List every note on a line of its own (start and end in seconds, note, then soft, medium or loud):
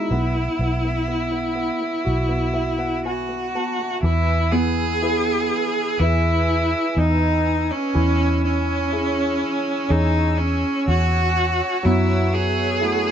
0.00 0.12 G#3 medium
0.00 0.11 B3 soft
0.00 0.11 D#4 soft
0.00 3.05 E4 medium
0.00 0.12 F#4 soft
0.00 0.11 D#5 soft
0.11 0.47 B1 medium
0.11 0.34 B3 medium
0.35 0.59 B3 soft
0.59 1.69 B1 medium
0.59 0.83 B3 soft
0.85 1.06 B3 soft
1.08 1.30 B3 soft
1.32 1.54 B3 soft
1.55 1.79 B3 soft
1.81 2.27 B3 soft
2.04 3.54 B1 medium
2.04 3.98 F#4 soft
2.29 2.52 B3 soft
2.54 2.77 B3 soft
2.54 2.77 E5 soft
2.79 3.04 B3 soft
2.79 3.02 F#5 soft
3.05 3.27 B3 soft
3.05 4.00 F#4 medium
3.05 3.51 G#5 soft
3.29 3.54 B3 soft
3.55 3.78 B3 soft
3.55 4.01 A5 soft
3.80 4.03 B3 soft
4.01 5.50 E2 medium
4.01 7.91 E3 medium
4.01 4.53 E4 medium
4.01 7.90 B4 medium
4.01 11.79 G#5 medium
4.01 7.90 E6 medium
4.51 8.07 B3 medium
4.51 6.00 G#4 medium
5.02 5.97 E4 soft
5.02 5.97 G#4 soft
5.02 5.97 B4 soft
5.99 6.73 E2 medium
5.99 6.98 E4 medium
5.99 6.94 E4 soft
5.99 6.94 G#4 soft
5.99 6.95 B4 soft
6.97 7.70 E2 medium
6.97 7.72 D#4 medium
6.97 9.68 D#4 medium
7.71 8.44 C#4 medium
7.94 9.42 E2 medium
7.94 11.81 E3 medium
7.94 13.11 C#5 medium
7.94 11.81 E6 medium
8.44 9.92 C#4 medium
8.92 9.87 C#4 soft
8.92 9.87 E4 soft
8.92 9.87 G#4 soft
9.89 10.63 E2 medium
9.89 10.84 C#4 soft
9.89 10.39 D#4 medium
9.89 10.84 G#4 medium
10.38 10.87 C#4 medium
10.88 11.61 E2 medium
10.88 11.86 F#4 loud
11.83 13.11 F#2 medium
11.83 13.11 F#3 medium
11.83 13.11 B3 medium
11.83 12.35 E4 medium
11.83 13.11 E5 medium
11.83 13.11 F#5 medium
11.83 13.11 E6 medium
12.33 13.11 G#4 loud
12.81 13.11 A3 soft
12.81 13.11 E4 soft
12.81 13.11 F#4 soft